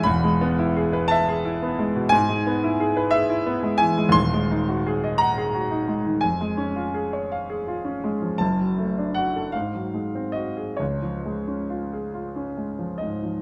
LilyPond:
\new Staff \with { instrumentName = "Grand piano" } { \time 12/8 \key e \major \tempo 4. = 56 << { b''4. a''4. gis''4. e''4 gis''8 | \key des \major c'''4. bes''4. aes''4. r4. | a''4 fis''8 f''4 ees''8 des''4. r4 ees''8 | } \\ { <e,, e,>16 gis16 b16 e'16 gis'16 b'16 e''16 gis'16 e'16 b16 gis16 b,16 gis,16 gis16 b16 e'16 gis'16 b'16 gis'16 e'16 b16 gis16 e16 gis16 | <ees,, ees,>16 aes16 ees'16 ges'16 aes'16 ees''16 ges''16 aes'16 ges'16 ees'16 aes16 ees16 f,16 aes16 des'16 f'16 aes'16 des''16 f''16 aes'16 f'16 des'16 aes16 f16 | <fis,, fis,>16 fis16 a16 d'16 fis'16 a'16 aes,16 ges16 aes16 c'16 ges'16 aes'16 des,16 f16 aes16 des'16 f'16 aes'16 f'16 des'16 aes16 f16 aes,16 f16 | } >> }